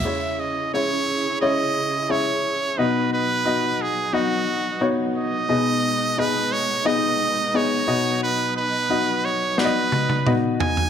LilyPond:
<<
  \new Staff \with { instrumentName = "Trumpet" } { \time 4/4 \key b \major \tempo 4 = 88 e''8 dis''8 cis''4 dis''4 cis''4 | b'8 b'4 gis'8 fis'4 r8 dis''8~ | dis''4 b'8 cis''8 dis''4 cis''4 | b'8 b'4 cis''8 b'4 r8 gis''8 | }
  \new Staff \with { instrumentName = "Grand piano" } { \time 4/4 \key b \major <gis cis' e' cis''>4 <gis cis' e' cis''>4 <gis cis' e' cis''>4 <gis cis' e' cis''>4 | <b dis' fis' dis''>4 <b dis' fis' dis''>4 <b dis' fis' dis''>4 <b dis' fis' cis''>4 | <b dis' gis' dis''>4 <b dis' gis' dis''>4 <b dis' gis' dis''>4 <b dis' gis' dis''>8 <b dis' fis' dis''>8~ | <b dis' fis' dis''>4 <b dis' fis' dis''>4 <b dis' fis' d'' dis''>4 <b dis' fis' dis''>4 | }
  \new Staff \with { instrumentName = "Grand piano" } { \clef bass \time 4/4 \key b \major cis4. r2 r8 | b,4. r2 r8 | b,4. r2 b,8~ | b,4 r2. | }
  \new Staff \with { instrumentName = "String section" } { \time 4/4 \key b \major << { <e' gis'>1 | <b dis'>1~ | <b dis'>1~ | <b dis'>1 | } \\ { <cis cis'>1 | fis1 | <b, gis>2.~ <b, gis>8 fis8~ | fis1 | } >> }
  \new DrumStaff \with { instrumentName = "Drums" } \drummode { \time 4/4 r4 r4 r4 r4 | r4 r4 r4 r4 | r4 r4 r4 r4 | r4 r4 sn8 tommh16 tommh16 toml8 tomfh16 tomfh16 | }
>>